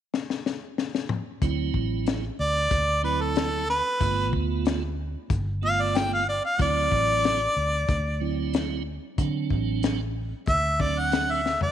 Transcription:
0.14 snare medium
0.30 snare medium
0.46 snare medium
0.78 snare medium
0.95 snare medium
1.09 mid tom medium
1.42 1.69 D2 medium
1.42 2.24 F#3 medium
1.42 2.25 C4 medium
1.42 2.25 E4 medium
1.42 kick medium
1.42 closed hi-hat medium
1.74 2.28 A1 medium
1.74 kick medium
2.06 snare loud
2.06 closed hi-hat medium
2.39 2.66 D2 medium
2.39 3.03 D5 medium
2.71 3.80 D2 medium
2.71 kick loud
2.71 closed hi-hat medium
3.03 3.65 F#3 medium
3.03 3.65 C4 medium
3.03 3.65 E4 medium
3.03 3.23 B4 medium
3.21 3.68 A4 medium
3.36 snare loud
3.36 closed hi-hat medium
3.70 4.32 B4 medium
3.70 snare soft
4.00 4.33 G1 medium
4.00 4.83 A3 medium
4.00 4.83 B3 medium
4.00 4.83 F4 medium
4.00 kick loud
4.00 closed hi-hat medium
4.33 5.14 D2 medium
4.33 kick medium
4.65 snare loud
4.65 closed hi-hat medium
5.30 6.39 G1 medium
5.30 kick loud
5.30 closed hi-hat medium
5.62 6.23 A3 medium
5.62 6.24 B3 medium
5.62 6.24 F4 medium
5.62 5.83 F5 medium
5.81 5.99 D5 medium
5.95 6.11 G5 medium
5.95 snare loud
5.95 closed hi-hat medium
6.14 6.27 F5 medium
6.29 6.43 D5 medium
6.45 6.59 F5 medium
6.58 6.87 D2 medium
6.58 7.41 F#3 medium
6.58 7.41 C4 medium
6.58 7.42 E4 medium
6.58 8.51 D5 loud
6.58 kick medium
6.58 closed hi-hat medium
6.92 7.46 A1 medium
6.92 kick medium
7.24 snare loud
7.24 closed hi-hat medium
7.57 7.84 D2 medium
7.88 8.97 D2 loud
7.88 kick loud
7.88 closed hi-hat medium
8.20 8.82 F#3 medium
8.20 8.83 C4 medium
8.20 8.83 E4 medium
8.53 snare loud
8.53 closed hi-hat medium
9.18 9.52 D3 medium
9.18 10.01 F#3 medium
9.18 10.01 C4 medium
9.18 10.01 D4 medium
9.18 kick loud
9.18 closed hi-hat medium
9.50 10.32 A1 medium
9.50 kick medium
9.83 snare loud
9.83 closed hi-hat medium
10.47 11.56 D2 medium
10.47 10.83 E5 medium
10.47 kick loud
10.47 closed hi-hat medium
10.79 11.41 F#3 medium
10.79 11.41 C4 medium
10.79 11.42 D4 medium
10.79 11.01 D5 medium
10.79 kick medium
10.99 11.33 F#5 medium
11.12 snare loud
11.12 closed hi-hat medium
11.31 11.62 E5 medium
11.46 snare medium
11.61 11.72 D5 medium
11.61 floor tom medium

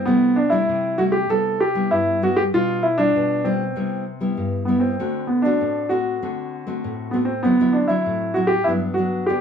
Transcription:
0.05 0.65 C3 medium
0.05 0.36 G3 medium
0.05 0.36 A3 medium
0.05 0.38 B3 medium
0.05 0.36 E4 medium
0.36 0.53 D4 medium
0.50 0.93 G3 medium
0.50 0.94 A3 medium
0.50 0.99 E4 medium
0.50 0.94 E4 medium
0.69 1.27 C3 medium
0.98 1.16 G3 medium
0.98 1.17 A3 medium
0.98 1.17 E4 medium
0.98 1.03 F#4 medium
1.12 1.27 G4 medium
1.29 1.88 C3 medium
1.29 1.58 G3 soft
1.29 1.59 B3 medium
1.29 1.59 E4 medium
1.29 1.62 A4 loud
1.60 1.92 G4 medium
1.75 2.17 G3 medium
1.75 2.17 B3 medium
1.75 2.17 E4 medium
1.91 2.50 G2 medium
1.91 2.20 E4 medium
2.22 2.40 G3 medium
2.22 2.40 B3 medium
2.22 2.41 E4 medium
2.22 2.37 F#4 medium
2.37 2.42 G4 medium
2.54 3.12 B2 medium
2.54 2.82 G3 medium
2.54 2.82 D4 medium
2.54 2.85 F4 loud
2.54 2.83 F4 medium
2.83 2.99 E4 medium
2.98 3.40 G3 medium
2.98 3.46 D4 loud
2.98 3.40 D4 medium
2.98 3.40 F4 medium
3.16 3.73 B2 medium
3.44 3.63 G3 medium
3.44 4.02 C4 medium
3.44 3.63 D4 medium
3.44 3.64 F4 medium
3.76 4.34 C3 medium
3.76 4.05 G3 soft
3.76 4.05 B3 soft
3.76 4.05 E4 medium
4.21 4.62 G3 medium
4.21 4.63 B3 medium
4.21 4.63 E4 medium
4.37 4.96 G2 medium
4.65 4.94 G3 medium
4.65 4.81 B3 medium
4.65 4.94 B3 medium
4.65 4.94 E4 medium
4.80 5.24 C4 medium
4.99 5.58 D3 medium
4.99 5.28 A3 soft
4.99 5.28 C4 medium
4.99 5.28 F#4 medium
5.27 5.44 B3 medium
5.42 5.86 A3 medium
5.42 5.86 C4 medium
5.42 5.86 D4 medium
5.42 5.86 F#4 medium
5.61 6.19 A2 medium
5.89 6.16 A3 soft
5.89 6.17 C4 medium
5.89 7.09 F#4 medium
5.89 6.17 F#4 medium
6.22 6.80 D3 medium
6.22 6.63 A3 medium
6.22 6.63 C4 medium
6.22 6.64 F#4 soft
6.67 7.08 A3 medium
6.67 7.09 C4 medium
6.67 7.09 F#4 medium
6.84 7.42 A2 medium
7.11 7.32 A3 soft
7.11 7.16 B3 medium
7.11 7.32 C4 medium
7.11 7.32 F#4 medium
7.25 7.43 C4 medium
7.43 8.03 D3 medium
7.43 7.55 F#3 medium
7.43 7.75 B3 medium
7.43 7.55 C4 medium
7.43 7.55 E4 medium
7.60 7.86 F#3 medium
7.60 7.86 C4 medium
7.60 7.86 E4 medium
7.73 7.90 D4 medium
7.88 8.31 F#3 medium
7.88 8.31 C4 medium
7.88 8.36 E4 medium
7.88 8.31 E4 medium
8.06 8.64 A2 medium
8.34 8.56 F#3 medium
8.34 8.56 C4 medium
8.34 8.56 E4 medium
8.34 8.49 F#4 medium
8.47 8.65 G4 medium
8.64 9.26 G2 medium
8.64 8.93 F#3 medium
8.64 8.71 E4 medium
8.68 8.93 B3 medium
8.68 8.94 D4 medium
8.94 9.24 F#3 medium
8.94 9.24 F#4 medium
8.98 9.24 B3 soft
8.98 9.24 D4 medium
9.26 9.41 D3 medium
9.26 9.41 B3 soft
9.26 9.41 D4 medium
9.26 9.41 G4 medium

